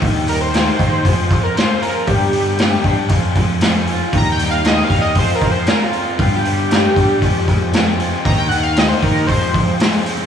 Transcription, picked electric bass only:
\new Staff \with { instrumentName = "Picked electric bass" } { \clef bass \time 4/4 \key f \dorian \tempo 4 = 117 ees,4. ees8 f,8 f,8 r4 | g,4. g,8 f,8 f,4. | ees,4. e,8 f,8 f,8 r4 | g,4. g,8 f,8 f,4. |
ees,4. ees8 f,8 f,8 r4 | }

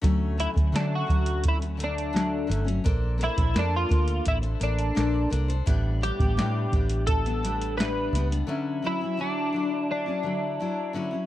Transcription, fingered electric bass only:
\new Staff \with { instrumentName = "Fingered electric bass" } { \clef bass \time 4/4 \key d \major \tempo 4 = 85 d,8. d,16 d8 d,2 g,,8 | bes,,8. bes,,16 f,8 d,8 a,,8 a,,8 bes,,8 c,8 | a,,8. a,,16 a,8 a,,2 cis,8 | r1 | }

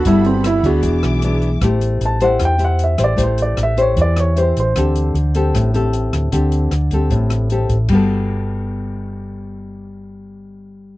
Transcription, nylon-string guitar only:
\new Staff \with { instrumentName = "Nylon-string guitar" } { \time 4/4 \key g \major \tempo 4 = 153 << { <b fis' a'>4. <b d' aes'>4. <b d' gis'>8 r8 | <e' g' c''>4. <e' g' c''>4 <e' g' c''>4 <e' g' c''>8 | <e' g' c''>4. <e' g' c''>4. <e' g' c''>8 r8 | <c' g' a'>4 r8 <c' g' a'>4 <c' g' a'>4. |
<c' g' a'>4 r8 <c' g' a'>4. <c' g' a'>8 r8 | <g b fis' a'>1~ | <g b fis' a'>1 | } \\ { g2 e2 | a2 e2 | a2 e2 | d2 a,2 |
d2 a,2 | r1 | r1 | } >> }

